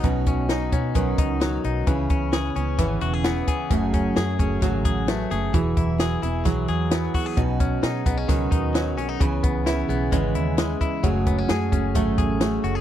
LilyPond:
<<
  \new Staff \with { instrumentName = "Synth keys" } { \time 4/4 \key b \mixolydian \tempo 4 = 131 <cis' dis' b'>4 <cis' dis' cis''>4 <cis' dis' b'>4 <cis' dis' fis'>4 | <cis' e' b'>4 <cis' e' b'>4 <cis' e' b'>4 <cis' e' b'>4 | <a fis' gis'>4 <a fis' gis'>4 <a fis' gis'>4 <a fis' b'>4 | <e' fis' gis'>4 <e' fis' gis'>4 <e' fis' gis'>4 <e' fis' b'>4 |
<cis' dis' b'>4 <cis' dis' gis'>4 <cis' dis' b'>4 <cis' dis' b'>4 | <cis' e' b'>4 <cis' e' b'>4 <cis' e' b'>4 <cis' e' b'>4 | <a fis' gis'>4 <a fis' gis'>4 <a fis' a'>4 <a fis' gis'>4 | }
  \new Staff \with { instrumentName = "Clean electric guitar" } { \time 4/4 \key b \mixolydian b,8 cis'8 dis'8 cis'8 dis8 dis'8 fis8 dis'8 | cis8 cis'8 gis'8 cis'8 e8 fis'16 gis'16 b8 gis'8 | fis,8 cis'8 gis'8 cis'8 fis8 gis'8 a8 gis'8 | e8 e'8 gis'8 e'8 fis8 gis'8 b8 fis'16 gis'16 |
b,8 cis'8 dis'8 b16 cis'16 dis8 dis'8 fis8 cis'16 dis'16 | cis8 b8 e'8 b8 gis8 e'8 gis8 e'8 | fis8 b16 cis'16 gis'8 cis'8 a8 gis'8 a8 fis'16 gis'16 | }
  \new Staff \with { instrumentName = "Steel-string acoustic guitar" } { \time 4/4 \key b \mixolydian <b, fis cis' dis' fis'>4 <fis cis' dis' fis'>8 <cis' dis' fis'>8 <b, fis cis' dis' fis'>4 <fis cis' dis' fis'>4 | <cis e b cis' gis'>4 <e b cis' gis'>8 <b cis' gis'>8 <cis e b cis' gis'>4 <e b cis' gis'>4 | <fis, cis fis a cis' gis'>4 <fis a cis' gis'>8 <fis a cis' gis'>8 <fis, cis fis a cis' gis'>4 <fis a cis' gis'>8 <fis a cis' gis'>8 | <e fis b e' gis'>4 <fis b e' gis'>8 <b e' gis'>8 <e fis b e' gis'>4 <fis b e' gis'>8 <b e' gis'>8 |
<b, fis cis' dis' fis'>4 <fis cis' dis' fis'>8 <cis' dis' fis'>8 <b, fis cis' dis' fis'>4 <fis cis' dis' fis'>8 <cis' dis' fis'>8 | <cis e b cis' gis'>4 <e b cis' gis'>8 <b cis' gis'>8 <cis e b cis' gis'>4 <e b cis' gis'>4 | <fis, cis fis a cis' gis'>4 <fis a cis' gis'>8 <fis a cis' gis'>8 <fis, cis fis a cis' gis'>4 <fis a cis' gis'>4 | }
  \new Staff \with { instrumentName = "Fingered electric bass" } { \clef bass \time 4/4 \key b \mixolydian b,,4. b,8 b,,8 cis,4 b,,8 | cis,8 cis,4 cis,8 gis,,8 e,,4 r8 | fis,,4 fis,8 fis,,8 gis,,8 a,,4 fis,,8 | e,,8 e,,4 e,,8 b,,8 e,4 r8 |
b,,4 b,8 b,,8 cis,8 dis,4 b,,8 | cis,8 cis,4 b,,8 gis,,8 dis,4 r8 | fis,,4 fis,8 fis,,8 gis,,8 a,,4 fis,,8 | }
  \new DrumStaff \with { instrumentName = "Drums" } \drummode { \time 4/4 <hh bd>8 <hh bd>8 <hh sn>8 <hh bd>8 <hh bd>8 <hh bd>8 <hh sn>8 hh8 | <hh bd>8 <hh bd>8 <hh sn>8 hh8 <hh bd sn>8 hh8 <hh sn>8 <hh bd>8 | <hh bd>8 <hh bd>8 <hh sn>8 <hh bd>8 <hh bd sn>8 <hh bd>8 <hh sn>8 hh8 | <hh bd>8 <hh bd>8 <hh sn>8 hh8 <hh bd sn>8 hh8 <hh sn>8 <hho bd>8 |
<hh bd>8 <hh bd>8 <hh sn>8 <hh bd>8 <hh bd sn>8 <hh bd>8 <hh sn>8 hh8 | <hh bd>8 <hh bd>8 <hh sn>8 hh8 <hh bd>8 hh8 <hh sn>8 <hh bd>8 | <hh bd>8 <hh bd>8 <hh sn>8 <hh bd>8 <hh bd>8 <hh bd>8 <hh sn>8 hh8 | }
>>